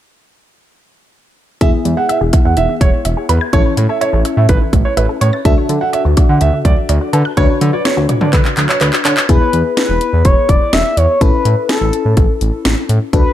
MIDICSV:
0, 0, Header, 1, 7, 480
1, 0, Start_track
1, 0, Tempo, 480000
1, 1611, Time_signature, 4, 2, 24, 8
1, 13331, End_track
2, 0, Start_track
2, 0, Title_t, "Grand piano"
2, 0, Program_c, 0, 0
2, 1612, Note_on_c, 0, 76, 87
2, 1686, Note_off_c, 0, 76, 0
2, 1972, Note_on_c, 0, 78, 75
2, 2046, Note_off_c, 0, 78, 0
2, 2092, Note_on_c, 0, 76, 73
2, 2167, Note_off_c, 0, 76, 0
2, 2452, Note_on_c, 0, 78, 66
2, 2527, Note_off_c, 0, 78, 0
2, 2571, Note_on_c, 0, 76, 81
2, 2721, Note_off_c, 0, 76, 0
2, 2812, Note_on_c, 0, 73, 78
2, 2887, Note_off_c, 0, 73, 0
2, 3292, Note_on_c, 0, 71, 66
2, 3367, Note_off_c, 0, 71, 0
2, 3532, Note_on_c, 0, 73, 98
2, 3606, Note_off_c, 0, 73, 0
2, 3892, Note_on_c, 0, 76, 71
2, 3966, Note_off_c, 0, 76, 0
2, 4012, Note_on_c, 0, 73, 79
2, 4087, Note_off_c, 0, 73, 0
2, 4372, Note_on_c, 0, 76, 64
2, 4446, Note_off_c, 0, 76, 0
2, 4491, Note_on_c, 0, 71, 81
2, 4566, Note_off_c, 0, 71, 0
2, 4850, Note_on_c, 0, 73, 75
2, 4925, Note_off_c, 0, 73, 0
2, 4971, Note_on_c, 0, 71, 77
2, 5046, Note_off_c, 0, 71, 0
2, 5211, Note_on_c, 0, 73, 73
2, 5286, Note_off_c, 0, 73, 0
2, 5452, Note_on_c, 0, 76, 91
2, 5526, Note_off_c, 0, 76, 0
2, 5811, Note_on_c, 0, 78, 76
2, 5886, Note_off_c, 0, 78, 0
2, 5931, Note_on_c, 0, 76, 81
2, 6006, Note_off_c, 0, 76, 0
2, 6292, Note_on_c, 0, 78, 68
2, 6367, Note_off_c, 0, 78, 0
2, 6413, Note_on_c, 0, 76, 82
2, 6562, Note_off_c, 0, 76, 0
2, 6654, Note_on_c, 0, 74, 80
2, 6728, Note_off_c, 0, 74, 0
2, 7133, Note_on_c, 0, 71, 65
2, 7207, Note_off_c, 0, 71, 0
2, 7372, Note_on_c, 0, 73, 103
2, 7447, Note_off_c, 0, 73, 0
2, 7732, Note_on_c, 0, 74, 72
2, 7806, Note_off_c, 0, 74, 0
2, 7852, Note_on_c, 0, 73, 82
2, 7927, Note_off_c, 0, 73, 0
2, 8211, Note_on_c, 0, 74, 68
2, 8286, Note_off_c, 0, 74, 0
2, 8330, Note_on_c, 0, 71, 78
2, 8405, Note_off_c, 0, 71, 0
2, 8690, Note_on_c, 0, 73, 76
2, 8765, Note_off_c, 0, 73, 0
2, 8810, Note_on_c, 0, 71, 80
2, 8885, Note_off_c, 0, 71, 0
2, 9050, Note_on_c, 0, 73, 77
2, 9125, Note_off_c, 0, 73, 0
2, 13331, End_track
3, 0, Start_track
3, 0, Title_t, "Analog synth lead"
3, 0, Program_c, 1, 81
3, 9290, Note_on_c, 1, 71, 88
3, 9737, Note_off_c, 1, 71, 0
3, 9769, Note_on_c, 1, 71, 94
3, 10249, Note_on_c, 1, 73, 100
3, 10264, Note_off_c, 1, 71, 0
3, 10488, Note_on_c, 1, 74, 100
3, 10503, Note_off_c, 1, 73, 0
3, 10728, Note_on_c, 1, 76, 108
3, 10743, Note_off_c, 1, 74, 0
3, 10968, Note_on_c, 1, 73, 97
3, 10983, Note_off_c, 1, 76, 0
3, 11209, Note_on_c, 1, 71, 99
3, 11224, Note_off_c, 1, 73, 0
3, 11684, Note_off_c, 1, 71, 0
3, 11690, Note_on_c, 1, 69, 81
3, 12610, Note_off_c, 1, 69, 0
3, 13134, Note_on_c, 1, 71, 86
3, 13331, Note_off_c, 1, 71, 0
3, 13331, End_track
4, 0, Start_track
4, 0, Title_t, "Synth arpeggio sound"
4, 0, Program_c, 2, 84
4, 1611, Note_on_c, 2, 52, 91
4, 1704, Note_off_c, 2, 52, 0
4, 1732, Note_on_c, 2, 52, 70
4, 1825, Note_off_c, 2, 52, 0
4, 1851, Note_on_c, 2, 56, 80
4, 1945, Note_off_c, 2, 56, 0
4, 1971, Note_on_c, 2, 68, 77
4, 2065, Note_off_c, 2, 68, 0
4, 2091, Note_on_c, 2, 76, 93
4, 2185, Note_off_c, 2, 76, 0
4, 2210, Note_on_c, 2, 68, 76
4, 2304, Note_off_c, 2, 68, 0
4, 2330, Note_on_c, 2, 76, 80
4, 2424, Note_off_c, 2, 76, 0
4, 2571, Note_on_c, 2, 52, 84
4, 2665, Note_off_c, 2, 52, 0
4, 2691, Note_on_c, 2, 52, 70
4, 2785, Note_off_c, 2, 52, 0
4, 2811, Note_on_c, 2, 56, 73
4, 2905, Note_off_c, 2, 56, 0
4, 3050, Note_on_c, 2, 76, 88
4, 3144, Note_off_c, 2, 76, 0
4, 3171, Note_on_c, 2, 68, 72
4, 3265, Note_off_c, 2, 68, 0
4, 3291, Note_on_c, 2, 83, 88
4, 3384, Note_off_c, 2, 83, 0
4, 3411, Note_on_c, 2, 92, 87
4, 3505, Note_off_c, 2, 92, 0
4, 3531, Note_on_c, 2, 52, 89
4, 3625, Note_off_c, 2, 52, 0
4, 3651, Note_on_c, 2, 52, 70
4, 3745, Note_off_c, 2, 52, 0
4, 3771, Note_on_c, 2, 57, 81
4, 3865, Note_off_c, 2, 57, 0
4, 3892, Note_on_c, 2, 69, 75
4, 3985, Note_off_c, 2, 69, 0
4, 4011, Note_on_c, 2, 76, 90
4, 4105, Note_off_c, 2, 76, 0
4, 4131, Note_on_c, 2, 69, 77
4, 4225, Note_off_c, 2, 69, 0
4, 4251, Note_on_c, 2, 76, 80
4, 4344, Note_off_c, 2, 76, 0
4, 4491, Note_on_c, 2, 52, 85
4, 4584, Note_off_c, 2, 52, 0
4, 4611, Note_on_c, 2, 52, 70
4, 4704, Note_off_c, 2, 52, 0
4, 4730, Note_on_c, 2, 57, 75
4, 4824, Note_off_c, 2, 57, 0
4, 4971, Note_on_c, 2, 76, 89
4, 5064, Note_off_c, 2, 76, 0
4, 5091, Note_on_c, 2, 69, 74
4, 5185, Note_off_c, 2, 69, 0
4, 5211, Note_on_c, 2, 85, 90
4, 5305, Note_off_c, 2, 85, 0
4, 5330, Note_on_c, 2, 93, 85
4, 5424, Note_off_c, 2, 93, 0
4, 5451, Note_on_c, 2, 50, 93
4, 5544, Note_off_c, 2, 50, 0
4, 5571, Note_on_c, 2, 50, 70
4, 5665, Note_off_c, 2, 50, 0
4, 5691, Note_on_c, 2, 54, 79
4, 5784, Note_off_c, 2, 54, 0
4, 5810, Note_on_c, 2, 66, 76
4, 5904, Note_off_c, 2, 66, 0
4, 5931, Note_on_c, 2, 74, 89
4, 6024, Note_off_c, 2, 74, 0
4, 6051, Note_on_c, 2, 66, 77
4, 6144, Note_off_c, 2, 66, 0
4, 6170, Note_on_c, 2, 74, 85
4, 6264, Note_off_c, 2, 74, 0
4, 6410, Note_on_c, 2, 50, 83
4, 6504, Note_off_c, 2, 50, 0
4, 6531, Note_on_c, 2, 50, 71
4, 6625, Note_off_c, 2, 50, 0
4, 6651, Note_on_c, 2, 54, 75
4, 6745, Note_off_c, 2, 54, 0
4, 6891, Note_on_c, 2, 74, 87
4, 6985, Note_off_c, 2, 74, 0
4, 7011, Note_on_c, 2, 66, 71
4, 7105, Note_off_c, 2, 66, 0
4, 7131, Note_on_c, 2, 81, 88
4, 7225, Note_off_c, 2, 81, 0
4, 7251, Note_on_c, 2, 90, 86
4, 7345, Note_off_c, 2, 90, 0
4, 7371, Note_on_c, 2, 50, 93
4, 7464, Note_off_c, 2, 50, 0
4, 7492, Note_on_c, 2, 50, 68
4, 7585, Note_off_c, 2, 50, 0
4, 7611, Note_on_c, 2, 54, 83
4, 7705, Note_off_c, 2, 54, 0
4, 7731, Note_on_c, 2, 66, 75
4, 7825, Note_off_c, 2, 66, 0
4, 7851, Note_on_c, 2, 74, 90
4, 7945, Note_off_c, 2, 74, 0
4, 7971, Note_on_c, 2, 66, 78
4, 8065, Note_off_c, 2, 66, 0
4, 8091, Note_on_c, 2, 74, 84
4, 8185, Note_off_c, 2, 74, 0
4, 8331, Note_on_c, 2, 50, 82
4, 8425, Note_off_c, 2, 50, 0
4, 8452, Note_on_c, 2, 50, 71
4, 8546, Note_off_c, 2, 50, 0
4, 8572, Note_on_c, 2, 54, 77
4, 8665, Note_off_c, 2, 54, 0
4, 8812, Note_on_c, 2, 74, 90
4, 8905, Note_off_c, 2, 74, 0
4, 8932, Note_on_c, 2, 66, 72
4, 9025, Note_off_c, 2, 66, 0
4, 9052, Note_on_c, 2, 81, 88
4, 9145, Note_off_c, 2, 81, 0
4, 9171, Note_on_c, 2, 90, 85
4, 9265, Note_off_c, 2, 90, 0
4, 13331, End_track
5, 0, Start_track
5, 0, Title_t, "FM electric piano"
5, 0, Program_c, 3, 5
5, 1611, Note_on_c, 3, 59, 70
5, 1611, Note_on_c, 3, 64, 64
5, 1611, Note_on_c, 3, 68, 75
5, 3493, Note_off_c, 3, 59, 0
5, 3493, Note_off_c, 3, 64, 0
5, 3493, Note_off_c, 3, 68, 0
5, 3530, Note_on_c, 3, 69, 75
5, 3531, Note_on_c, 3, 61, 70
5, 3531, Note_on_c, 3, 64, 63
5, 5412, Note_off_c, 3, 61, 0
5, 5412, Note_off_c, 3, 64, 0
5, 5412, Note_off_c, 3, 69, 0
5, 5450, Note_on_c, 3, 62, 72
5, 5450, Note_on_c, 3, 66, 67
5, 5450, Note_on_c, 3, 69, 81
5, 7332, Note_off_c, 3, 62, 0
5, 7332, Note_off_c, 3, 66, 0
5, 7332, Note_off_c, 3, 69, 0
5, 7370, Note_on_c, 3, 62, 72
5, 7370, Note_on_c, 3, 66, 64
5, 7370, Note_on_c, 3, 71, 81
5, 9252, Note_off_c, 3, 62, 0
5, 9252, Note_off_c, 3, 66, 0
5, 9252, Note_off_c, 3, 71, 0
5, 9290, Note_on_c, 3, 59, 63
5, 9290, Note_on_c, 3, 64, 58
5, 9290, Note_on_c, 3, 68, 71
5, 11172, Note_off_c, 3, 59, 0
5, 11172, Note_off_c, 3, 64, 0
5, 11172, Note_off_c, 3, 68, 0
5, 11210, Note_on_c, 3, 64, 58
5, 11211, Note_on_c, 3, 61, 63
5, 11211, Note_on_c, 3, 69, 67
5, 13092, Note_off_c, 3, 61, 0
5, 13092, Note_off_c, 3, 64, 0
5, 13092, Note_off_c, 3, 69, 0
5, 13131, Note_on_c, 3, 62, 63
5, 13131, Note_on_c, 3, 66, 58
5, 13131, Note_on_c, 3, 69, 69
5, 13331, Note_off_c, 3, 62, 0
5, 13331, Note_off_c, 3, 66, 0
5, 13331, Note_off_c, 3, 69, 0
5, 13331, End_track
6, 0, Start_track
6, 0, Title_t, "Analog synth bass"
6, 0, Program_c, 4, 38
6, 1612, Note_on_c, 4, 28, 98
6, 1710, Note_off_c, 4, 28, 0
6, 1851, Note_on_c, 4, 40, 97
6, 1950, Note_off_c, 4, 40, 0
6, 2212, Note_on_c, 4, 28, 86
6, 2311, Note_off_c, 4, 28, 0
6, 2451, Note_on_c, 4, 40, 86
6, 2550, Note_off_c, 4, 40, 0
6, 2572, Note_on_c, 4, 28, 103
6, 2671, Note_off_c, 4, 28, 0
6, 2809, Note_on_c, 4, 28, 90
6, 2909, Note_off_c, 4, 28, 0
6, 3052, Note_on_c, 4, 28, 91
6, 3150, Note_off_c, 4, 28, 0
6, 3292, Note_on_c, 4, 40, 101
6, 3391, Note_off_c, 4, 40, 0
6, 3531, Note_on_c, 4, 33, 97
6, 3630, Note_off_c, 4, 33, 0
6, 3771, Note_on_c, 4, 45, 96
6, 3870, Note_off_c, 4, 45, 0
6, 4131, Note_on_c, 4, 33, 98
6, 4230, Note_off_c, 4, 33, 0
6, 4370, Note_on_c, 4, 45, 99
6, 4470, Note_off_c, 4, 45, 0
6, 4491, Note_on_c, 4, 33, 106
6, 4590, Note_off_c, 4, 33, 0
6, 4730, Note_on_c, 4, 33, 99
6, 4830, Note_off_c, 4, 33, 0
6, 4971, Note_on_c, 4, 33, 98
6, 5070, Note_off_c, 4, 33, 0
6, 5212, Note_on_c, 4, 45, 93
6, 5311, Note_off_c, 4, 45, 0
6, 5451, Note_on_c, 4, 38, 105
6, 5550, Note_off_c, 4, 38, 0
6, 5692, Note_on_c, 4, 50, 90
6, 5791, Note_off_c, 4, 50, 0
6, 6051, Note_on_c, 4, 38, 89
6, 6150, Note_off_c, 4, 38, 0
6, 6291, Note_on_c, 4, 50, 87
6, 6390, Note_off_c, 4, 50, 0
6, 6411, Note_on_c, 4, 38, 102
6, 6510, Note_off_c, 4, 38, 0
6, 6649, Note_on_c, 4, 38, 87
6, 6749, Note_off_c, 4, 38, 0
6, 6890, Note_on_c, 4, 38, 94
6, 6990, Note_off_c, 4, 38, 0
6, 7131, Note_on_c, 4, 50, 88
6, 7230, Note_off_c, 4, 50, 0
6, 7371, Note_on_c, 4, 38, 99
6, 7470, Note_off_c, 4, 38, 0
6, 7612, Note_on_c, 4, 50, 100
6, 7711, Note_off_c, 4, 50, 0
6, 7970, Note_on_c, 4, 38, 89
6, 8070, Note_off_c, 4, 38, 0
6, 8212, Note_on_c, 4, 50, 102
6, 8310, Note_off_c, 4, 50, 0
6, 8331, Note_on_c, 4, 38, 107
6, 8430, Note_off_c, 4, 38, 0
6, 8571, Note_on_c, 4, 38, 90
6, 8670, Note_off_c, 4, 38, 0
6, 8811, Note_on_c, 4, 38, 95
6, 8910, Note_off_c, 4, 38, 0
6, 9051, Note_on_c, 4, 50, 99
6, 9150, Note_off_c, 4, 50, 0
6, 9291, Note_on_c, 4, 28, 102
6, 9390, Note_off_c, 4, 28, 0
6, 9532, Note_on_c, 4, 40, 97
6, 9630, Note_off_c, 4, 40, 0
6, 9891, Note_on_c, 4, 28, 89
6, 9990, Note_off_c, 4, 28, 0
6, 10130, Note_on_c, 4, 40, 89
6, 10230, Note_off_c, 4, 40, 0
6, 10251, Note_on_c, 4, 28, 105
6, 10350, Note_off_c, 4, 28, 0
6, 10490, Note_on_c, 4, 28, 89
6, 10589, Note_off_c, 4, 28, 0
6, 10730, Note_on_c, 4, 28, 92
6, 10830, Note_off_c, 4, 28, 0
6, 10970, Note_on_c, 4, 40, 99
6, 11070, Note_off_c, 4, 40, 0
6, 11211, Note_on_c, 4, 33, 98
6, 11310, Note_off_c, 4, 33, 0
6, 11451, Note_on_c, 4, 45, 96
6, 11550, Note_off_c, 4, 45, 0
6, 11812, Note_on_c, 4, 33, 97
6, 11910, Note_off_c, 4, 33, 0
6, 12052, Note_on_c, 4, 45, 100
6, 12151, Note_off_c, 4, 45, 0
6, 12171, Note_on_c, 4, 33, 109
6, 12270, Note_off_c, 4, 33, 0
6, 12412, Note_on_c, 4, 33, 100
6, 12511, Note_off_c, 4, 33, 0
6, 12652, Note_on_c, 4, 33, 101
6, 12751, Note_off_c, 4, 33, 0
6, 12892, Note_on_c, 4, 45, 99
6, 12991, Note_off_c, 4, 45, 0
6, 13132, Note_on_c, 4, 38, 105
6, 13231, Note_off_c, 4, 38, 0
6, 13331, End_track
7, 0, Start_track
7, 0, Title_t, "Drums"
7, 1611, Note_on_c, 9, 36, 102
7, 1611, Note_on_c, 9, 42, 68
7, 1711, Note_off_c, 9, 36, 0
7, 1711, Note_off_c, 9, 42, 0
7, 1853, Note_on_c, 9, 42, 68
7, 1953, Note_off_c, 9, 42, 0
7, 2094, Note_on_c, 9, 42, 65
7, 2194, Note_off_c, 9, 42, 0
7, 2330, Note_on_c, 9, 42, 70
7, 2333, Note_on_c, 9, 36, 84
7, 2430, Note_off_c, 9, 42, 0
7, 2433, Note_off_c, 9, 36, 0
7, 2568, Note_on_c, 9, 42, 64
7, 2668, Note_off_c, 9, 42, 0
7, 2809, Note_on_c, 9, 36, 83
7, 2811, Note_on_c, 9, 42, 62
7, 2909, Note_off_c, 9, 36, 0
7, 2911, Note_off_c, 9, 42, 0
7, 3050, Note_on_c, 9, 42, 76
7, 3150, Note_off_c, 9, 42, 0
7, 3292, Note_on_c, 9, 42, 74
7, 3392, Note_off_c, 9, 42, 0
7, 3530, Note_on_c, 9, 42, 70
7, 3531, Note_on_c, 9, 36, 102
7, 3630, Note_off_c, 9, 42, 0
7, 3631, Note_off_c, 9, 36, 0
7, 3773, Note_on_c, 9, 42, 68
7, 3873, Note_off_c, 9, 42, 0
7, 4014, Note_on_c, 9, 42, 66
7, 4114, Note_off_c, 9, 42, 0
7, 4250, Note_on_c, 9, 42, 70
7, 4350, Note_off_c, 9, 42, 0
7, 4488, Note_on_c, 9, 42, 66
7, 4491, Note_on_c, 9, 36, 86
7, 4588, Note_off_c, 9, 42, 0
7, 4591, Note_off_c, 9, 36, 0
7, 4730, Note_on_c, 9, 36, 80
7, 4731, Note_on_c, 9, 42, 61
7, 4830, Note_off_c, 9, 36, 0
7, 4831, Note_off_c, 9, 42, 0
7, 4972, Note_on_c, 9, 42, 76
7, 5072, Note_off_c, 9, 42, 0
7, 5213, Note_on_c, 9, 42, 77
7, 5313, Note_off_c, 9, 42, 0
7, 5451, Note_on_c, 9, 36, 104
7, 5452, Note_on_c, 9, 42, 68
7, 5551, Note_off_c, 9, 36, 0
7, 5552, Note_off_c, 9, 42, 0
7, 5693, Note_on_c, 9, 42, 69
7, 5793, Note_off_c, 9, 42, 0
7, 5934, Note_on_c, 9, 42, 65
7, 6034, Note_off_c, 9, 42, 0
7, 6170, Note_on_c, 9, 42, 73
7, 6173, Note_on_c, 9, 36, 88
7, 6270, Note_off_c, 9, 42, 0
7, 6273, Note_off_c, 9, 36, 0
7, 6408, Note_on_c, 9, 42, 68
7, 6508, Note_off_c, 9, 42, 0
7, 6649, Note_on_c, 9, 36, 83
7, 6651, Note_on_c, 9, 42, 64
7, 6749, Note_off_c, 9, 36, 0
7, 6751, Note_off_c, 9, 42, 0
7, 6891, Note_on_c, 9, 42, 75
7, 6991, Note_off_c, 9, 42, 0
7, 7133, Note_on_c, 9, 42, 73
7, 7233, Note_off_c, 9, 42, 0
7, 7371, Note_on_c, 9, 36, 101
7, 7371, Note_on_c, 9, 42, 69
7, 7471, Note_off_c, 9, 36, 0
7, 7471, Note_off_c, 9, 42, 0
7, 7613, Note_on_c, 9, 42, 69
7, 7713, Note_off_c, 9, 42, 0
7, 7852, Note_on_c, 9, 38, 107
7, 7854, Note_on_c, 9, 42, 67
7, 7952, Note_off_c, 9, 38, 0
7, 7954, Note_off_c, 9, 42, 0
7, 8090, Note_on_c, 9, 42, 71
7, 8092, Note_on_c, 9, 45, 87
7, 8190, Note_off_c, 9, 42, 0
7, 8192, Note_off_c, 9, 45, 0
7, 8210, Note_on_c, 9, 47, 87
7, 8310, Note_off_c, 9, 47, 0
7, 8329, Note_on_c, 9, 42, 66
7, 8331, Note_on_c, 9, 36, 88
7, 8332, Note_on_c, 9, 39, 53
7, 8429, Note_off_c, 9, 42, 0
7, 8431, Note_off_c, 9, 36, 0
7, 8432, Note_off_c, 9, 39, 0
7, 8451, Note_on_c, 9, 39, 48
7, 8551, Note_off_c, 9, 39, 0
7, 8571, Note_on_c, 9, 42, 63
7, 8572, Note_on_c, 9, 39, 61
7, 8671, Note_off_c, 9, 42, 0
7, 8672, Note_off_c, 9, 39, 0
7, 8691, Note_on_c, 9, 39, 60
7, 8791, Note_off_c, 9, 39, 0
7, 8811, Note_on_c, 9, 39, 73
7, 8811, Note_on_c, 9, 42, 75
7, 8911, Note_off_c, 9, 39, 0
7, 8911, Note_off_c, 9, 42, 0
7, 8931, Note_on_c, 9, 39, 67
7, 9031, Note_off_c, 9, 39, 0
7, 9051, Note_on_c, 9, 39, 85
7, 9053, Note_on_c, 9, 42, 76
7, 9151, Note_off_c, 9, 39, 0
7, 9153, Note_off_c, 9, 42, 0
7, 9171, Note_on_c, 9, 39, 80
7, 9271, Note_off_c, 9, 39, 0
7, 9290, Note_on_c, 9, 42, 66
7, 9291, Note_on_c, 9, 36, 100
7, 9390, Note_off_c, 9, 42, 0
7, 9391, Note_off_c, 9, 36, 0
7, 9532, Note_on_c, 9, 42, 68
7, 9632, Note_off_c, 9, 42, 0
7, 9772, Note_on_c, 9, 38, 108
7, 9774, Note_on_c, 9, 42, 66
7, 9872, Note_off_c, 9, 38, 0
7, 9874, Note_off_c, 9, 42, 0
7, 10010, Note_on_c, 9, 42, 72
7, 10110, Note_off_c, 9, 42, 0
7, 10248, Note_on_c, 9, 42, 67
7, 10251, Note_on_c, 9, 36, 88
7, 10348, Note_off_c, 9, 42, 0
7, 10351, Note_off_c, 9, 36, 0
7, 10489, Note_on_c, 9, 36, 84
7, 10491, Note_on_c, 9, 42, 62
7, 10589, Note_off_c, 9, 36, 0
7, 10591, Note_off_c, 9, 42, 0
7, 10730, Note_on_c, 9, 38, 107
7, 10731, Note_on_c, 9, 42, 80
7, 10830, Note_off_c, 9, 38, 0
7, 10831, Note_off_c, 9, 42, 0
7, 10974, Note_on_c, 9, 42, 80
7, 11074, Note_off_c, 9, 42, 0
7, 11212, Note_on_c, 9, 36, 104
7, 11212, Note_on_c, 9, 42, 68
7, 11311, Note_off_c, 9, 36, 0
7, 11312, Note_off_c, 9, 42, 0
7, 11454, Note_on_c, 9, 42, 71
7, 11554, Note_off_c, 9, 42, 0
7, 11693, Note_on_c, 9, 38, 106
7, 11695, Note_on_c, 9, 42, 68
7, 11793, Note_off_c, 9, 38, 0
7, 11795, Note_off_c, 9, 42, 0
7, 11931, Note_on_c, 9, 42, 73
7, 12031, Note_off_c, 9, 42, 0
7, 12169, Note_on_c, 9, 42, 67
7, 12172, Note_on_c, 9, 36, 86
7, 12269, Note_off_c, 9, 42, 0
7, 12272, Note_off_c, 9, 36, 0
7, 12411, Note_on_c, 9, 42, 61
7, 12511, Note_off_c, 9, 42, 0
7, 12651, Note_on_c, 9, 38, 109
7, 12652, Note_on_c, 9, 42, 77
7, 12751, Note_off_c, 9, 38, 0
7, 12752, Note_off_c, 9, 42, 0
7, 12894, Note_on_c, 9, 42, 75
7, 12994, Note_off_c, 9, 42, 0
7, 13132, Note_on_c, 9, 36, 105
7, 13132, Note_on_c, 9, 42, 71
7, 13232, Note_off_c, 9, 36, 0
7, 13232, Note_off_c, 9, 42, 0
7, 13331, End_track
0, 0, End_of_file